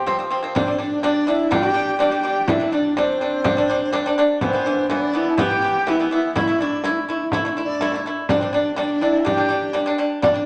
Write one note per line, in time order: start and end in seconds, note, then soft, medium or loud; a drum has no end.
0.00 0.30 G4 medium
0.06 0.16 F3 medium
0.06 0.16 C4 medium
0.06 frame drum medium
0.19 0.28 F3 medium
0.19 0.29 C4 medium
0.30 0.40 F3 medium
0.30 0.40 C4 medium
0.30 frame drum soft
0.43 0.52 F3 medium
0.43 0.53 C4 medium
0.55 0.64 G3 medium
0.55 0.79 C4 loud
0.55 0.65 D4 loud
0.55 0.81 C5 medium
0.55 frame drum medium
0.67 0.77 G3 medium
0.67 0.77 D4 medium
0.78 0.98 G3 medium
0.78 0.98 D4 medium
0.78 1.03 D4 medium
0.78 1.03 D5 medium
0.92 frame drum soft
1.03 1.22 G3 medium
1.03 1.23 D4 loud
1.03 1.30 D4 medium
1.03 1.29 D5 medium
1.03 frame drum medium
1.27 1.46 G3 medium
1.27 1.47 D4 medium
1.27 1.55 E4 loud
1.27 1.53 E5 medium
1.27 frame drum soft
1.51 1.61 G3 medium
1.51 1.61 D4 loud
1.51 2.00 G4 loud
1.51 2.00 G5 medium
1.51 frame drum medium
1.62 1.72 G3 medium
1.62 1.73 D4 medium
1.74 1.94 G3 medium
1.74 1.95 D4 medium
1.99 2.09 G3 medium
1.99 2.10 D4 loud
1.99 2.23 G4 loud
1.99 2.50 G5 medium
1.99 frame drum medium
2.11 2.21 G3 medium
2.11 2.22 D4 medium
2.23 2.43 G3 medium
2.23 2.44 D4 medium
2.23 2.49 G4 loud
2.47 2.57 G3 medium
2.47 2.58 D4 medium
2.47 2.75 E4 loud
2.47 2.73 E5 medium
2.47 frame drum medium
2.60 2.70 G3 medium
2.60 2.70 D4 medium
2.72 2.92 G3 medium
2.72 2.92 D4 medium
2.72 2.99 D4 medium
2.72 2.89 D5 medium
2.84 frame drum soft
2.89 2.96 D5 soft
2.96 3.16 G3 medium
2.96 4.18 C4 medium
2.96 3.17 D4 loud
2.96 3.01 D5 medium
2.96 frame drum medium
3.00 4.17 C5 medium
3.20 3.40 G3 medium
3.20 3.41 D4 medium
3.20 frame drum soft
3.44 3.54 G3 loud
3.44 3.55 D4 loud
3.44 frame drum medium
3.57 3.66 G3 medium
3.57 3.67 D4 medium
3.70 3.89 G3 medium
3.70 3.89 D4 loud
3.82 frame drum soft
3.92 4.02 G3 loud
3.92 4.03 D4 loud
3.92 frame drum medium
4.06 4.15 G3 medium
4.06 4.16 D4 medium
4.18 4.37 G3 medium
4.18 4.37 D4 loud
4.41 4.51 E3 loud
4.41 4.51 B3 loud
4.41 4.64 C4 loud
4.41 4.86 C5 medium
4.41 frame drum medium
4.53 4.63 E3 medium
4.53 4.64 B3 medium
4.66 4.85 E3 medium
4.66 4.86 B3 medium
4.66 4.89 D4 medium
4.78 frame drum soft
4.90 5.09 E3 loud
4.90 5.10 B3 loud
4.90 5.17 D4 medium
4.90 5.31 D5 medium
4.90 frame drum medium
5.13 5.33 E3 medium
5.13 5.34 B3 medium
5.13 5.43 E4 loud
5.13 frame drum soft
5.30 5.39 A5 medium
5.38 5.48 E3 medium
5.38 5.48 B3 loud
5.38 5.91 G4 loud
5.38 5.89 G5 loud
5.38 frame drum medium
5.50 5.60 E3 medium
5.50 5.60 B3 medium
5.62 5.82 E3 medium
5.62 5.83 B3 medium
5.75 frame drum soft
5.87 5.96 E3 medium
5.87 5.97 B3 medium
5.87 6.12 E4 loud
5.87 6.11 E5 medium
5.87 frame drum medium
5.99 6.09 E3 medium
5.99 6.09 B3 medium
6.11 6.30 E3 medium
6.11 6.31 B3 medium
6.11 6.35 E4 medium
6.11 6.33 E5 medium
6.35 6.45 A3 medium
6.35 6.45 E4 loud
6.35 6.64 E4 loud
6.35 6.61 E5 medium
6.35 frame drum medium
6.48 6.57 A3 medium
6.48 6.58 E4 medium
6.60 6.79 A3 medium
6.60 6.83 D4 medium
6.60 6.80 E4 medium
6.60 6.84 D5 medium
6.73 frame drum soft
6.84 7.03 A3 medium
6.84 6.92 D4 medium
6.84 7.04 E4 loud
6.84 frame drum medium
6.90 7.01 E4 medium
7.00 7.11 D4 medium
7.08 7.27 A3 medium
7.08 7.18 E4 medium
7.08 7.28 E4 medium
7.08 frame drum soft
7.17 7.25 D4 medium
7.23 7.34 E4 medium
7.32 7.42 A3 medium
7.32 7.44 D4 medium
7.32 7.43 E4 loud
7.32 frame drum medium
7.42 7.54 A3 medium
7.42 7.53 E4 medium
7.46 7.55 E4 medium
7.52 7.59 D4 medium
7.57 7.76 A3 medium
7.57 7.68 E4 medium
7.57 7.76 E4 medium
7.65 8.06 D4 medium
7.65 8.02 D5 medium
7.69 frame drum soft
7.81 7.90 A3 medium
7.81 7.91 E4 loud
7.81 frame drum medium
7.92 8.03 A3 medium
7.92 8.04 E4 medium
7.92 frame drum soft
8.06 8.25 A3 medium
8.06 8.25 E4 medium
8.29 8.39 G3 medium
8.29 8.53 C4 medium
8.29 8.39 D4 loud
8.29 8.35 D5 medium
8.29 frame drum medium
8.34 8.54 C5 medium
8.41 8.51 G3 medium
8.41 8.51 D4 medium
8.53 8.72 G3 medium
8.53 8.73 D4 medium
8.53 8.76 D4 medium
8.53 8.75 D5 medium
8.65 frame drum soft
8.76 8.96 G3 loud
8.76 9.03 D4 medium
8.76 8.97 D4 loud
8.76 9.21 D5 medium
8.76 8.80 E5 medium
8.76 frame drum medium
9.01 9.21 G3 medium
9.01 9.21 D4 medium
9.01 9.27 E4 loud
9.01 frame drum soft
9.20 9.26 A5 medium
9.25 9.35 G3 medium
9.25 9.36 D4 loud
9.25 9.74 G4 loud
9.25 9.31 A5 medium
9.25 frame drum medium
9.30 9.75 G5 medium
9.37 9.47 G3 medium
9.37 9.48 D4 medium
9.49 9.69 G3 medium
9.49 9.69 D4 medium
9.64 frame drum soft
9.73 9.84 G3 medium
9.73 9.84 D4 loud
9.73 frame drum medium
9.86 9.96 G3 medium
9.86 9.97 D4 medium
9.98 10.18 G3 medium
9.98 10.18 D4 medium
10.22 10.32 G3 medium
10.22 10.33 D4 medium
10.22 10.46 D4 medium
10.22 10.46 D5 medium
10.22 frame drum medium
10.34 10.44 G3 medium
10.34 10.45 D4 medium